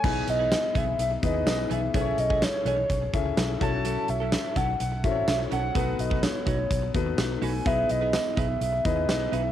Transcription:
<<
  \new Staff \with { instrumentName = "Soft synth lead" } { \time 4/4 \key e \major \tempo 4 = 126 gis''8 dis''4 e''8 e''8 dis''4 e''8 | e''8 dis''8 cis''8 cis''4 r4 a''8~ | a''8 e''4 fis''8 fis''8 e''8 e''8 fis''8~ | fis''8 dis''8 cis''8 cis''4 r4 gis''8 |
e''8 dis''4 e''8 e''8 dis''4 e''8 | }
  \new Staff \with { instrumentName = "Grand piano" } { \time 4/4 \key e \major << { cis''8 r2. r8 | r1 | r1 | r1 |
r1 | } \\ { <b dis' e' gis' b'>4. r4 <b dis' e' gis' b'>4 r8 | <cis' e' gis' a' b' cis''>4. r4 <cis' e' gis' a' e''>4 <cis' e' fis' a' cis''>8~ | <cis' e' fis' a' cis''>4 r4. <cis' e' fis' a' c'' cis''>4 r8 | <b dis' fis' a' b'>4. r4 <b dis' fis' a' b'>4 r8 |
<b dis' e' gis' b'>4. r4 <b dis' e' gis' b'>4 r8 | } >> }
  \new Staff \with { instrumentName = "Clean electric guitar" } { \time 4/4 \key e \major <e b dis' gis'>8 r16 <e b dis' gis'>16 r8 <e b dis' gis'>8 r4. <e b dis' gis'>8 | <e a cis' gis'>8 r16 <e a cis' gis'>16 r8 <e a cis' gis'>8 r4. <fis cis' e' a'>8 | <fis cis' e' a'>8 r16 <fis cis' e' a'>16 r8 <fis cis' e' a'>8 r4. <fis cis' e' a'>8 | <a dis' fis' b'>8 r16 <a dis' fis' b'>16 r8 <a dis' fis' b'>8 r4. <a dis' fis' b'>8 |
<b dis' gis' b'>8 r16 <b dis' gis' b'>16 r8 <b dis' gis' b'>8 r4. <b dis' gis' b'>8 | }
  \new Staff \with { instrumentName = "Fingered electric bass" } { \clef bass \time 4/4 \key e \major b,,8 b,,8. r16 b,,8 b,,8 dis,8 b,,8 b,,8 | b,,8 b,,8. r16 b,,8 b,,8 cis,8 b,,8 b,,8~ | b,,8 b,,8. r16 b,,8 b,,8 a,,8 b,,8 b,,8 | b,,8 b,,8. r16 b,,8 b,,8 dis,8 b,,8 b,,8 |
b,,8 b,,8. r16 b,,8 b,,8 dis,8 b,,8 b,,8 | }
  \new DrumStaff \with { instrumentName = "Drums" } \drummode { \time 4/4 <cymc bd>8 hh8 <hh sn tamb>8 <hh bd>8 hh8 <hh bd>8 <hh sn tamb>8 hh8 | <hh bd>8 hh16 bd16 <hh sn tamb>8 hh8 <hh bd>8 <hh bd>8 <hh sn tamb>8 <hh bd>8 | hh8 hh8 <hh sn tamb>8 <hh bd>8 hh8 <hh bd>8 <hh sn tamb>8 hh8 | <hh bd>8 hh16 bd16 <hh sn tamb>8 <hh bd>8 <hh bd>8 <hh bd>8 <hh sn tamb>8 hho8 |
<hh bd>8 hh8 <hh sn tamb>8 <hh bd>8 hh8 <hh bd>8 <hh sn tamb>8 hh8 | }
>>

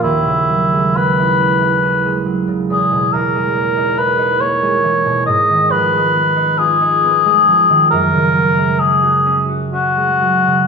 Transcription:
<<
  \new Staff \with { instrumentName = "Cor anglais" } { \time 3/4 \key fis \mixolydian \tempo 4 = 68 e'4 b'4. r8 | gis'8 ais'4 b'8 cis''4 | dis''8 b'4 gis'4. | ais'4 gis'8 r8 fis'4 | }
  \new Staff \with { instrumentName = "Harp" } { \clef bass \time 3/4 \key fis \mixolydian <dis, cis'>16 cis16 fis16 gis16 cis'16 e'16 cis'16 e'16 cis'16 gis16 fis16 cis16 | e,16 b,16 e16 gis16 ais16 dis'16 e'16 dis'16 ais16 gis16 e16 b,16 | gis,16 dis16 eis16 gis16 b16 dis'16 eis'16 dis'16 b16 gis16 eis16 dis16 | fis,16 cis16 fis16 gis16 cis'16 fis'16 cis'16 fis'16 cis'16 gis16 fis16 cis16 | }
>>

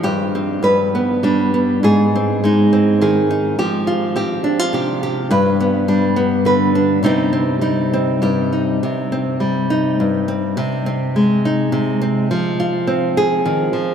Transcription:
\new Staff \with { instrumentName = "Nylon-string guitar" } { \time 3/4 \key c \minor \tempo 4 = 104 << { g'8 c'8 b'8 b8 d'8 b8 | aes'8 c'8 ees'8 c'8 aes'8 ees'8 | g'8 f'8 g'8 d'16 f'16 g'8 g'8 | b'8 b8 d'8 b8 b'8 d'8 |
<g c' ees' g'>8 c'8 ees'8 c'8 g'8 ees'8 | r8 c'4 ees'4 c'8 | r8 c'4 ees'4 c'8 | r8 f'4 aes'4. | } \\ { g,4 g,4 g4 | aes,4 aes4 ees4 | f4 c'4 c4 | g,4 g4 d4 |
c4 g4 g,4 | c4 g4 g,4 | c4 aes4 c4 | f4 c'4 ees8 f8 | } >> }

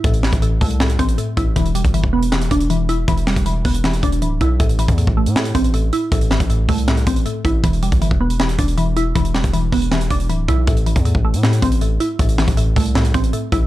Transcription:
<<
  \new Staff \with { instrumentName = "Synth pluck" } { \clef bass \time 4/4 \key a \minor \tempo 4 = 158 <a, c' e'>8 e8 a,8 a8 a,8 c'8 a,8 e'8 | e8 g8 e8 b8 e8 d'8 e8 e'8 | e8 g8 e8 b8 e8 d'8 e8 e'8 | a,8 e8 a,8 a8 a,8 c'8 a,8 e'8 |
a,8 e8 a,8 a8 a,8 c'8 a,8 e'8 | e8 g8 e8 b8 e8 d'8 e8 e'8 | e8 g8 e8 b8 e8 d'8 e8 e'8 | a,8 e8 a,8 a8 a,8 c'8 a,8 e'8 |
a,8 e8 a,8 a8 a,8 c'8 a,8 e'8 | }
  \new Staff \with { instrumentName = "808-style bass" } { \clef bass \time 4/4 \key a \minor a,,8. a,,8. c,4 a,,8 r8 a,,8 | e,,8. g,,8 e,,4~ e,,16 e,,4. | e,,8. e,,8. e,,4 e,,8 d,,8 b,,8 | a,,8. e,8 a,,8 a,8. a,,4 r8 |
a,,8. a,,8. c,4 a,,8 r8 a,,8 | e,,8. g,,8 e,,4~ e,,16 e,,4. | e,,8. e,,8. e,,4 e,,8 d,,8 b,,8 | a,,8. e,8 a,,8 a,8. a,,4 r8 |
a,,8. a,,8. c,4 a,,8 r8 a,,8 | }
  \new DrumStaff \with { instrumentName = "Drums" } \drummode { \time 4/4 <hh bd>16 hh16 <hc sn>16 <hh bd>16 hh8 <hho bd>16 hh16 <hc sn>16 hh16 <hh bd>16 hh16 hh8 <hh bd>8 | <hh bd>16 hh16 hh16 <hh bd>16 hh16 bd8 hh16 <hc sn>16 hh16 <hh bd>16 hh16 hh8 hh8 | <hh bd>16 hh16 <hc sn>16 <hh bd>16 hh8 <hho bd>16 hh16 <hc sn>16 hh16 <hh bd>16 hh16 hh8 <hh bd>8 | <hh bd>16 hh16 hh16 <hh bd>16 hh16 bd8 hh16 <hc sn>16 hh16 <hh bd>16 hh16 hh8 hh8 |
<hh bd>16 hh16 <hc sn>16 <hh bd>16 hh8 <hho bd>16 hh16 <hc sn>16 hh16 <hh bd>16 hh16 hh8 <hh bd>8 | <hh bd>16 hh16 hh16 <hh bd>16 hh16 bd8 hh16 <hc sn>16 hh16 <hh bd>16 hh16 hh8 hh8 | <hh bd>16 hh16 <hc sn>16 <hh bd>16 hh8 <hho bd>16 hh16 <hc sn>16 hh16 <hh bd>16 hh16 hh8 <hh bd>8 | <hh bd>16 hh16 hh16 <hh bd>16 hh16 bd8 hh16 <hc sn>16 hh16 <hh bd>16 hh16 hh8 hh8 |
<hh bd>16 hh16 <hc sn>16 <hh bd>16 hh8 <hho bd>16 hh16 <hc sn>16 hh16 <hh bd>16 hh16 hh8 <hh bd>8 | }
>>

